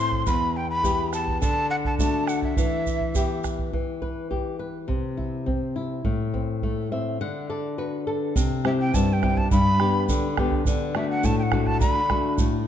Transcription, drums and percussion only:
0.12 bombo low
0.27 bombo low, shaker
0.84 bombo low, shaker
1.13 bombo rim, shaker
1.28 bombo low
1.42 bombo low, shaker
1.85 bombo low
1.99 bombo low, shaker
2.27 bombo rim, shaker
2.42 bombo low
2.57 bombo low, shaker
2.86 bombo low, shaker
3.01 bombo low
3.15 bombo low, shaker
3.44 bombo rim, bombo low, shaker
3.59 bombo low
3.73 bombo low
4.02 bombo low
4.32 bombo low
4.89 bombo low
5.19 bombo low
5.47 bombo low
6.04 bombo low
6.34 bombo low
6.62 bombo low
8.36 bombo low, shaker
8.65 bombo rim
8.94 bombo low, shaker
9.23 bombo rim, bombo low
9.37 bombo low
9.51 bombo low, shaker
9.80 bombo rim
10.09 bombo low, shaker
10.37 bombo rim, bombo low
10.52 bombo low
10.65 bombo low, shaker
10.95 bombo rim
11.24 bombo low, shaker
11.52 bombo rim, bombo low
11.66 bombo low
11.81 bombo low, shaker
12.10 bombo rim, bombo low
12.38 bombo low, shaker

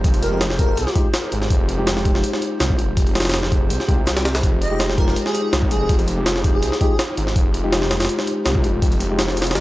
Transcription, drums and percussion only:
0.04 kick, closed hi-hat
0.14 closed hi-hat
0.23 closed hi-hat
0.41 snare, closed hi-hat
0.50 snare
0.59 kick, closed hi-hat
0.77 closed hi-hat
0.87 snare
0.96 kick, closed hi-hat
1.14 snare, closed hi-hat
1.32 closed hi-hat
1.42 snare
1.50 kick, closed hi-hat
1.69 closed hi-hat
1.87 snare, closed hi-hat
1.97 snare
2.05 kick, closed hi-hat
2.15 snare
2.24 closed hi-hat
2.33 snare
2.42 closed hi-hat
2.60 snare, closed hi-hat
2.70 kick
2.79 closed hi-hat
2.97 kick, closed hi-hat
3.07 closed hi-hat
3.15 snare, closed hi-hat
3.20 snare, closed hi-hat
3.25 snare, closed hi-hat
3.29 snare, closed hi-hat
3.34 snare, closed hi-hat
3.43 snare
3.52 kick, closed hi-hat
3.70 closed hi-hat
3.80 snare
3.88 kick, closed hi-hat
4.07 snare, closed hi-hat
4.17 snare, closed hi-hat
4.25 snare, closed hi-hat
4.35 snare, closed hi-hat
4.43 kick, closed hi-hat
4.62 closed hi-hat
4.80 snare, closed hi-hat
4.90 snare
4.98 kick, closed hi-hat
5.08 snare
5.16 closed hi-hat
5.26 snare
5.35 closed hi-hat
5.53 snare, closed hi-hat
5.62 kick
5.71 closed hi-hat
5.89 kick, closed hi-hat
5.99 closed hi-hat
6.08 closed hi-hat
6.26 snare, closed hi-hat
6.36 snare
6.44 kick, closed hi-hat
6.63 closed hi-hat
6.72 snare
6.81 kick, closed hi-hat
6.99 snare, closed hi-hat
7.17 closed hi-hat
7.27 snare
7.36 kick, closed hi-hat
7.54 closed hi-hat
7.72 snare, closed hi-hat
7.82 snare
7.91 snare, closed hi-hat
8.00 snare, closed hi-hat
8.05 snare, closed hi-hat
8.09 closed hi-hat
8.19 snare
8.27 closed hi-hat
8.46 snare, closed hi-hat
8.55 kick
8.64 closed hi-hat
8.82 kick, closed hi-hat
8.92 closed hi-hat
9.00 closed hi-hat
9.19 snare, closed hi-hat
9.28 snare
9.37 closed hi-hat
9.42 snare, closed hi-hat
9.47 closed hi-hat
9.51 snare, closed hi-hat
9.55 snare, closed hi-hat

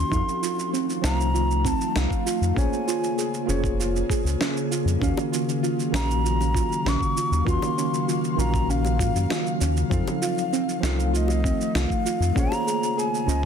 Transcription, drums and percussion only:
0.12 kick, shaker
0.29 shaker
0.43 shaker
0.59 shaker
0.74 shaker
0.90 shaker
1.04 snare, shaker
1.20 shaker
1.35 shaker
1.51 shaker
1.65 kick, shaker
1.81 shaker
1.96 snare, shaker
2.10 kick, shaker
2.27 shaker
2.42 shaker
2.56 kick, shaker
2.73 shaker
2.88 shaker
3.04 shaker
3.19 shaker
3.34 shaker
3.49 shaker
3.64 kick, shaker
3.80 shaker
3.96 shaker
4.10 kick, shaker
4.27 shaker
4.41 snare, shaker
4.57 shaker
4.72 shaker
4.88 shaker
5.02 kick, shaker
5.17 high bongo, shaker
5.34 shaker
5.49 shaker
5.64 shaker
5.79 shaker
5.94 snare, shaker
6.11 shaker
6.26 shaker
6.40 high bongo, shaker
6.54 kick, shaker
6.72 shaker
6.86 snare, shaker
7.01 kick, shaker
7.17 shaker
7.33 shaker
7.47 kick, shaker
7.62 high bongo, shaker
7.78 shaker
7.94 shaker
8.09 shaker
8.24 shaker
8.39 shaker
8.54 kick, shaker
8.70 shaker
8.84 high bongo, shaker
8.99 kick, shaker
9.16 shaker
9.30 snare, shaker
9.46 shaker
9.61 shaker
9.77 shaker
9.91 kick, shaker
10.07 high bongo, shaker
10.23 shaker
10.38 shaker
10.53 shaker
10.69 shaker
10.83 snare, shaker
10.99 shaker
11.15 shaker
11.28 high bongo, shaker
11.44 kick, shaker
11.61 shaker
11.75 snare, shaker
11.90 kick, shaker
12.06 shaker
12.22 shaker
12.36 kick, shaker
12.52 high bongo, shaker
12.68 shaker
12.83 shaker
12.99 shaker
13.14 shaker
13.29 shaker

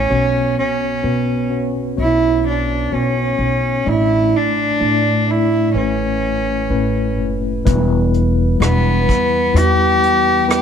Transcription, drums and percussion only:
7.66 kick, closed hi-hat
8.14 closed hi-hat
8.61 cross-stick, closed hi-hat
9.09 kick, closed hi-hat
9.56 closed hi-hat
10.03 closed hi-hat
10.50 cross-stick, closed hi-hat

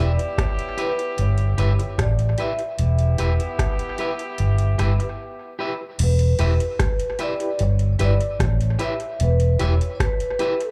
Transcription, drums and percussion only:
0.19 closed hi-hat
0.38 kick, cross-stick, closed hi-hat
0.59 closed hi-hat
0.78 closed hi-hat
0.99 closed hi-hat
1.18 closed hi-hat
1.38 closed hi-hat
1.58 closed hi-hat
1.80 closed hi-hat
1.98 kick, cross-stick, closed hi-hat
2.19 closed hi-hat
2.38 closed hi-hat
2.59 closed hi-hat
2.79 closed hi-hat
2.99 closed hi-hat
3.18 closed hi-hat
3.40 closed hi-hat
3.59 kick, cross-stick, closed hi-hat
3.79 closed hi-hat
3.98 closed hi-hat
4.19 closed hi-hat
4.38 closed hi-hat
4.58 closed hi-hat
4.79 cross-stick, closed hi-hat
5.00 closed hi-hat
5.99 closed hi-hat, crash
6.19 closed hi-hat
6.39 closed hi-hat
6.60 closed hi-hat
6.79 kick, cross-stick, closed hi-hat
7.00 closed hi-hat
7.19 closed hi-hat
7.40 closed hi-hat
7.59 closed hi-hat
7.79 closed hi-hat
7.99 closed hi-hat
8.21 closed hi-hat
8.40 kick, cross-stick, closed hi-hat
8.61 closed hi-hat
8.79 closed hi-hat
9.00 closed hi-hat
9.20 closed hi-hat
9.40 closed hi-hat
9.60 closed hi-hat
9.81 closed hi-hat
10.00 kick, cross-stick, closed hi-hat
10.20 closed hi-hat
10.39 closed hi-hat
10.61 closed hi-hat

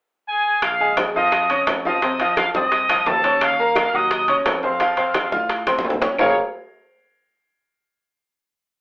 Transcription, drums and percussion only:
0.62 high bongo, high conga, high timbale, claves
0.80 high conga
0.97 high bongo, high conga, high timbale, low timbale, claves
1.32 high bongo, high conga, high timbale
1.50 high conga, high timbale
1.67 high bongo, low bongo, high conga, high timbale, low timbale, claves
1.85 high conga
2.02 high bongo, high conga, high timbale
2.20 high bongo, high conga, high timbale
2.37 high bongo, high conga, high timbale, low timbale, claves
2.54 high bongo, high conga
2.72 high bongo, high conga, high timbale
2.89 high bongo, high conga, high timbale, claves
3.07 high bongo, low bongo, high conga, low timbale
3.24 high conga, high timbale
3.41 high bongo, high conga, high timbale, claves
3.59 high conga
3.75 high bongo, high conga, high timbale, low timbale, claves
4.11 high bongo, high conga, high timbale
4.28 high conga, high timbale
4.46 high bongo, low bongo, high conga, high timbale, low timbale, claves
4.63 high conga
4.80 high bongo, high conga, high timbale
4.97 high bongo, high conga, high timbale
5.14 high bongo, high conga, high timbale, low timbale, claves
5.32 high bongo, high conga
5.49 high bongo, high conga, high timbale
5.67 high bongo, high conga, high timbale, claves
5.78 high bongo, high conga
5.85 low timbale
5.90 low bongo, low conga
6.02 low bongo, low conga, high timbale
6.18 low bongo, low conga, low timbale, claves

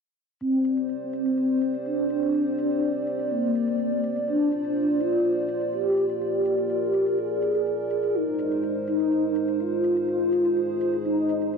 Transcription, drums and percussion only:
0.40 shaker
0.64 shaker
0.77 shaker
0.89 shaker
1.13 shaker
1.25 shaker
1.37 shaker
1.61 shaker
1.74 shaker
1.85 shaker
2.10 shaker
2.22 shaker
2.34 shaker
2.58 shaker
2.70 shaker
2.82 shaker
3.07 shaker
3.19 shaker
3.31 shaker
3.55 shaker
3.67 shaker
3.79 shaker
4.03 shaker
4.16 shaker
4.27 shaker
4.52 shaker
4.64 shaker
4.76 shaker
5.00 shaker
5.12 shaker
5.24 shaker
5.48 shaker
5.61 shaker
5.73 shaker
5.97 shaker
6.09 shaker
6.21 shaker
6.45 shaker
6.58 shaker
6.69 shaker
6.94 shaker
7.06 shaker
7.18 shaker
7.42 shaker
7.54 shaker
7.66 shaker
7.90 shaker
8.03 shaker
8.15 shaker
8.39 shaker
8.51 shaker
8.63 shaker
8.87 shaker
9.00 shaker
9.11 shaker
9.36 shaker
9.48 shaker
9.60 shaker
9.84 shaker
9.96 shaker
10.08 shaker
10.32 shaker
10.45 shaker
10.56 shaker
10.81 shaker
10.93 shaker
11.05 shaker
11.29 shaker
11.41 shaker
11.53 shaker

